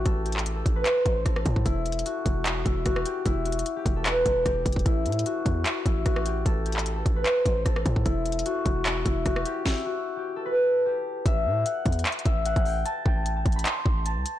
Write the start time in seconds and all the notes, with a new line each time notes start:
Already playing: E4 G4
0.05 A1 A4, kick, closed hi-hat
0.26 G4, closed hi-hat
0.32 closed hi-hat
0.36 clap, closed hi-hat
0.46 closed hi-hat
0.56 A4
0.66 A1, kick, closed hi-hat
0.76 B4
0.85 C5, clap, closed hi-hat
1.06 A1, kick, closed hi-hat
1.26 A1 A4, kick, cross-stick, closed hi-hat
1.36 cross-stick
1.46 A2, kick, closed hi-hat
1.56 kick
1.65 E1 E4, kick, closed hi-hat
1.86 closed hi-hat, open hi-hat
1.92 closed hi-hat
1.99 closed hi-hat
2.05 F#4, closed hi-hat
2.26 E1, kick, closed hi-hat
2.46 clap, closed hi-hat
2.66 E1 E4, kick, closed hi-hat
2.86 E1 F#4, kick, cross-stick, closed hi-hat
2.96 cross-stick
3.05 G4, closed hi-hat
3.26 E1 E4, kick, closed hi-hat
3.46 F#4, closed hi-hat, open hi-hat
3.52 closed hi-hat
3.59 closed hi-hat
3.66 closed hi-hat
3.76 G4
3.86 E1, kick, closed hi-hat
3.96 A4
4.05 B4, clap, closed hi-hat
4.26 E1, kick, closed hi-hat
4.46 E1 G4, kick, cross-stick, closed hi-hat
4.66 E1, kick, closed hi-hat
4.72 kick, closed hi-hat
4.79 closed hi-hat
4.86 A1 E4, kick, closed hi-hat
5.06 A2, closed hi-hat, open hi-hat
5.12 closed hi-hat
5.19 closed hi-hat
5.26 F#4, closed hi-hat
5.46 E2, kick, closed hi-hat
5.66 clap, closed hi-hat
5.86 A1 E4, kick, closed hi-hat
6.06 A1 F#4, kick, cross-stick, closed hi-hat
6.16 cross-stick
6.26 G4, closed hi-hat
6.45 A1 A4, kick, closed hi-hat
6.66 G4, closed hi-hat
6.72 closed hi-hat
6.76 clap, closed hi-hat
6.86 closed hi-hat
6.96 A4
7.06 A1, kick, closed hi-hat
7.16 B4
7.25 C5, clap, closed hi-hat
7.46 A1, kick, closed hi-hat
7.66 A1 A4, kick, cross-stick, closed hi-hat
7.76 cross-stick
7.86 A2, kick, closed hi-hat
7.96 kick
8.05 E1 E4, kick, closed hi-hat
8.26 closed hi-hat, open hi-hat
8.32 closed hi-hat
8.39 closed hi-hat
8.46 F#4, closed hi-hat
8.66 E1, kick, closed hi-hat
8.86 clap, closed hi-hat
9.06 E1 E4, kick, closed hi-hat
9.26 E1 F#4, kick, cross-stick, closed hi-hat
9.36 cross-stick
9.45 G4, closed hi-hat
9.66 E4, kick, snare
9.86 F#4
10.16 G4
10.36 A4
10.46 B4
10.86 G4
11.26 A1 E5, kick, closed hi-hat
11.46 A2
11.66 F#5, closed hi-hat
11.86 E2, kick, closed hi-hat
11.92 closed hi-hat
11.99 closed hi-hat
12.06 clap, closed hi-hat
12.12 closed hi-hat
12.19 closed hi-hat
12.26 A1 E5, kick, closed hi-hat
12.46 F#5, closed hi-hat
12.56 A1, kick, closed hi-hat
12.65 G5, open hi-hat
12.85 A5, closed hi-hat
13.06 A1 G5, kick
13.26 closed hi-hat
13.36 A5
13.46 A1, kick, closed hi-hat
13.52 B5, closed hi-hat
13.59 closed hi-hat
13.65 C6, clap, closed hi-hat
13.86 A1, kick
14.06 A5, closed hi-hat
14.16 C2
14.26 closed hi-hat